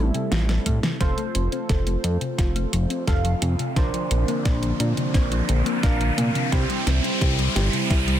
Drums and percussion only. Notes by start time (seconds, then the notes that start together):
0.14 closed hi-hat
0.32 snare, closed hi-hat
0.49 snare, closed hi-hat
0.66 kick, closed hi-hat
0.83 snare, closed hi-hat
1.01 kick, snare, closed hi-hat
1.18 closed hi-hat
1.35 closed hi-hat
1.52 closed hi-hat
1.69 kick, snare, closed hi-hat
1.87 closed hi-hat
2.04 closed hi-hat
2.21 closed hi-hat
2.39 kick, snare, closed hi-hat
2.56 closed hi-hat
2.73 closed hi-hat
2.90 closed hi-hat
3.08 kick, snare, closed hi-hat
3.25 closed hi-hat
3.42 closed hi-hat
3.59 closed hi-hat
3.76 kick, snare, closed hi-hat
3.94 closed hi-hat
4.11 closed hi-hat
4.28 closed hi-hat
4.45 kick, snare, closed hi-hat
4.63 closed hi-hat
4.80 closed hi-hat
4.97 closed hi-hat
5.14 kick, snare, closed hi-hat
5.32 closed hi-hat
5.49 closed hi-hat
5.66 closed hi-hat
5.83 kick, snare, closed hi-hat
6.01 closed hi-hat
6.18 closed hi-hat
6.35 closed hi-hat
6.52 kick, snare, closed hi-hat
6.70 closed hi-hat
6.87 snare, closed hi-hat
7.04 closed hi-hat
7.21 kick, snare, closed hi-hat
7.39 closed hi-hat
7.56 snare, closed hi-hat
7.73 closed hi-hat
7.90 kick, snare, closed hi-hat
8.08 closed hi-hat